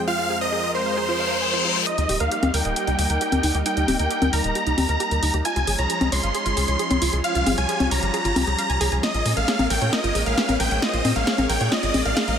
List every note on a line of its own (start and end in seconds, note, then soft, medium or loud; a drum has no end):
0.00 1.83 F2 medium
0.00 1.83 F3 medium
0.00 1.83 G#3 medium
0.00 1.83 C4 medium
0.08 0.16 F4 medium
0.08 1.85 A#4 medium
0.08 0.37 F5 loud
0.19 0.27 F4 medium
0.30 0.36 G#4 medium
0.41 0.47 C5 medium
0.41 0.71 D#5 medium
0.52 0.58 G#4 medium
0.64 0.72 C5 medium
0.75 1.78 C5 loud
0.75 0.80 C5 loud
0.86 0.92 F5 medium
0.97 1.01 G#4 medium
0.97 reverse cymbal medium
1.09 1.17 F4 medium
1.20 1.25 F5 medium
1.31 1.36 F5 medium
1.42 1.45 G#5 medium
1.53 1.59 F4 medium
1.65 1.68 F4 medium
1.76 1.84 C5 medium
1.87 5.41 G3 medium
1.87 5.41 A#3 medium
1.87 5.41 D#4 medium
1.87 1.95 D#4 medium
1.87 2.16 D#5 medium
1.87 closed hi-hat medium
1.87 riser medium
1.98 2.06 D#2 medium
1.98 2.06 D#4 medium
1.98 closed hi-hat soft
2.09 2.17 D#1 medium
2.09 2.15 G4 medium
2.09 open hi-hat loud
2.20 2.29 D#2 medium
2.20 2.26 A#4 medium
2.20 2.50 F5 medium
2.20 closed hi-hat medium
2.32 2.37 G4 medium
2.32 closed hi-hat medium
2.43 2.51 D#2 medium
2.43 2.51 A#4 medium
2.43 closed hi-hat medium
2.43 high conga medium
2.54 2.62 D#2 medium
2.54 2.59 A#4 medium
2.54 3.57 G5 loud
2.54 open hi-hat loud
2.65 2.73 D#1 medium
2.65 2.71 D#5 medium
2.65 closed hi-hat medium
2.76 2.80 G4 medium
2.76 closed hi-hat medium
2.87 2.96 C#2 medium
2.87 2.96 D#4 medium
2.87 closed hi-hat medium
2.99 3.07 D#2 loud
2.99 3.04 G4 medium
2.99 open hi-hat loud
3.10 3.18 D#2 medium
3.10 3.15 A#4 medium
3.10 closed hi-hat medium
3.21 3.27 G4 medium
3.21 closed hi-hat medium
3.32 3.40 D#2 medium
3.32 3.41 A#4 medium
3.32 closed hi-hat medium
3.32 high conga medium
3.43 3.52 D#2 medium
3.43 3.52 D#4 medium
3.43 open hi-hat loud
3.55 3.63 D#2 medium
3.55 3.58 G4 medium
3.55 closed hi-hat medium
3.66 3.74 D#4 medium
3.66 3.96 G5 loud
3.66 closed hi-hat medium
3.77 3.85 D#2 medium
3.77 3.85 D#4 medium
3.77 closed hi-hat medium
3.88 3.96 D#1 loud
3.88 3.94 G4 medium
3.88 open hi-hat loud
3.88 high conga medium
3.99 4.08 D#2 medium
3.99 4.05 A#4 medium
3.99 4.29 G5 medium
3.99 closed hi-hat medium
4.11 4.16 G4 medium
4.11 closed hi-hat medium
4.22 4.30 D#2 medium
4.22 4.30 A#4 medium
4.22 closed hi-hat medium
4.22 high conga medium
4.33 4.41 D#2 loud
4.33 4.39 A#4 loud
4.33 5.36 A#5 loud
4.33 open hi-hat loud
4.44 4.52 D#1 medium
4.44 4.50 D#5 medium
4.44 closed hi-hat soft
4.55 4.59 G4 medium
4.55 closed hi-hat medium
4.67 4.75 C#2 medium
4.67 4.75 D#4 medium
4.67 closed hi-hat medium
4.78 4.86 D#2 loud
4.78 4.83 G4 medium
4.78 open hi-hat loud
4.78 high conga medium
4.89 4.97 D#2 medium
4.89 4.95 A#4 medium
4.89 closed hi-hat soft
5.00 5.06 G4 medium
5.00 closed hi-hat medium
5.11 5.20 D#2 medium
5.11 5.20 A#4 medium
5.11 closed hi-hat medium
5.23 5.31 D#2 medium
5.23 5.31 D#4 medium
5.23 open hi-hat loud
5.34 5.42 D#2 medium
5.34 5.37 G4 medium
5.34 closed hi-hat soft
5.45 9.00 F3 medium
5.45 7.22 G#3 medium
5.45 9.00 C#4 medium
5.45 5.53 F4 medium
5.45 5.75 G#5 loud
5.45 closed hi-hat medium
5.56 5.64 C#2 medium
5.56 5.64 F4 medium
5.56 closed hi-hat soft
5.67 5.76 G#1 loud
5.67 5.73 G#4 medium
5.67 open hi-hat loud
5.79 5.87 C#2 medium
5.79 5.84 C#5 medium
5.79 6.08 A#5 medium
5.79 closed hi-hat medium
5.90 5.95 G#4 medium
5.90 closed hi-hat medium
6.01 6.09 C#2 medium
6.01 6.09 C#5 medium
6.01 closed hi-hat soft
6.01 high conga medium
6.12 6.20 C#2 loud
6.12 6.18 C#5 loud
6.12 7.15 C6 loud
6.12 open hi-hat loud
6.23 6.32 G#1 medium
6.23 6.29 F5 medium
6.23 closed hi-hat soft
6.35 6.38 G#4 medium
6.35 closed hi-hat medium
6.46 6.54 G#1 medium
6.46 6.54 F4 medium
6.46 closed hi-hat soft
6.57 6.65 C#2 medium
6.57 6.62 G#4 medium
6.57 open hi-hat loud
6.68 6.76 C#2 loud
6.68 6.74 C#5 medium
6.68 closed hi-hat soft
6.79 6.85 G#4 medium
6.79 closed hi-hat medium
6.91 6.99 C#2 medium
6.91 6.99 C#5 medium
6.91 closed hi-hat medium
6.91 high conga medium
7.02 7.10 C#2 medium
7.02 7.10 F4 medium
7.02 open hi-hat loud
7.13 7.21 C#2 medium
7.13 7.16 G#4 medium
7.13 closed hi-hat soft
7.24 9.01 G3 medium
7.24 7.32 F4 medium
7.24 7.54 F5 loud
7.24 closed hi-hat medium
7.35 7.44 C#2 medium
7.35 7.44 F4 medium
7.35 closed hi-hat soft
7.47 7.55 G#1 loud
7.47 7.52 G#4 medium
7.47 open hi-hat loud
7.47 high conga medium
7.58 7.66 C#2 medium
7.58 7.63 C#5 medium
7.58 7.87 G#5 medium
7.58 closed hi-hat soft
7.69 7.74 G#4 medium
7.69 closed hi-hat medium
7.80 7.88 C#2 medium
7.80 7.88 C#5 medium
7.80 closed hi-hat soft
7.80 high conga medium
7.91 8.00 C#2 medium
7.91 7.97 C#5 medium
7.91 8.94 A#5 loud
7.91 open hi-hat loud
8.02 8.11 G#1 medium
8.02 8.08 F5 medium
8.02 closed hi-hat soft
8.14 8.17 G#4 medium
8.14 closed hi-hat medium
8.25 8.33 G#1 medium
8.25 8.33 F4 medium
8.25 closed hi-hat soft
8.36 8.44 C#2 loud
8.36 8.42 F4 medium
8.36 open hi-hat loud
8.36 high conga medium
8.47 8.55 C#2 medium
8.47 8.53 G#4 medium
8.47 closed hi-hat soft
8.58 8.67 F5 loud
8.58 closed hi-hat medium
8.70 8.78 C#2 medium
8.70 8.75 G#5 loud
8.70 closed hi-hat soft
8.81 8.89 C#2 loud
8.81 8.86 G#4 loud
8.81 open hi-hat loud
8.92 9.00 C#2 medium
8.92 8.97 G#5 medium
8.92 closed hi-hat soft
9.03 12.39 G#3 medium
9.03 12.39 A#3 medium
9.03 12.39 C#4 medium
9.03 9.11 F4 medium
9.03 9.33 D#5 medium
9.03 snare soft
9.03 closed hi-hat medium
9.14 9.23 A#1 medium
9.14 9.23 F4 medium
9.14 closed hi-hat soft
9.26 9.34 A#2 loud
9.26 9.31 G#4 medium
9.26 open hi-hat loud
9.37 9.45 A#1 medium
9.37 9.42 A#4 medium
9.37 9.66 F5 medium
9.37 closed hi-hat soft
9.48 9.53 G#4 medium
9.48 snare soft
9.48 closed hi-hat medium
9.59 9.67 A#1 medium
9.59 9.67 A#4 medium
9.59 closed hi-hat soft
9.59 high conga medium
9.70 9.79 A#1 loud
9.70 9.76 A#4 medium
9.70 9.91 G5 medium
9.70 open hi-hat loud
9.82 9.90 A#2 medium
9.82 9.87 C#5 medium
9.82 closed hi-hat soft
9.93 10.01 F4 medium
9.93 10.22 D#5 medium
9.93 snare medium
9.93 closed hi-hat medium
10.04 10.12 G#1 medium
10.04 10.12 F4 medium
10.04 closed hi-hat soft
10.15 10.23 A#1 loud
10.15 10.21 G#4 medium
10.15 open hi-hat loud
10.26 10.35 A#1 medium
10.26 10.32 A#4 medium
10.26 10.56 F5 medium
10.26 closed hi-hat soft
10.37 10.43 G#4 medium
10.37 snare medium
10.37 closed hi-hat medium
10.49 10.57 A#1 medium
10.49 10.57 A#4 medium
10.49 closed hi-hat soft
10.49 high conga medium
10.60 10.68 A#1 loud
10.60 10.65 A#4 loud
10.60 10.81 G5 medium
10.60 open hi-hat loud
10.71 10.79 A#1 medium
10.71 10.77 C#5 medium
10.71 closed hi-hat soft
10.82 10.90 F4 medium
10.82 11.12 D#5 loud
10.82 snare medium
10.82 closed hi-hat medium
10.93 11.02 A#1 medium
10.93 11.02 F4 medium
10.93 closed hi-hat soft
11.05 11.13 A#2 loud
11.05 11.10 G#4 medium
11.05 open hi-hat loud
11.05 high conga medium
11.16 11.24 A#1 medium
11.16 11.21 A#4 medium
11.16 11.46 F5 medium
11.16 closed hi-hat medium
11.27 11.33 G#4 medium
11.27 snare medium
11.27 closed hi-hat medium
11.38 11.46 A#1 medium
11.38 11.47 A#4 medium
11.38 closed hi-hat medium
11.38 high conga medium
11.49 11.58 A#1 loud
11.49 11.55 A#4 loud
11.49 11.70 G5 medium
11.49 open hi-hat loud
11.61 11.69 A#2 loud
11.61 11.66 C#5 medium
11.61 closed hi-hat soft
11.72 11.80 F4 medium
11.72 12.02 D#5 loud
11.72 snare medium
11.72 closed hi-hat medium
11.83 11.91 G#1 medium
11.83 11.91 F4 medium
11.83 closed hi-hat medium
11.94 12.02 A#1 loud
11.94 12.00 G#4 medium
11.94 open hi-hat loud
11.94 high conga medium
12.05 12.14 A#1 medium
12.05 12.11 A#4 medium
12.05 12.35 F5 loud
12.05 closed hi-hat medium
12.17 12.22 G#4 medium
12.17 snare medium
12.17 closed hi-hat medium
12.28 12.36 A#1 medium
12.28 12.36 A#4 medium
12.28 closed hi-hat medium